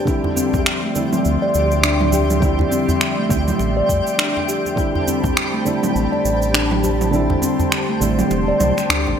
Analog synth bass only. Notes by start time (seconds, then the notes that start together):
1.26 D2
1.55 D2
3.31 D2
3.60 A1
3.89 F2
5.95 A1
6.25 A1
8.01 A1
8.31 E1
8.60 C2
8.90 D2
9.07 A1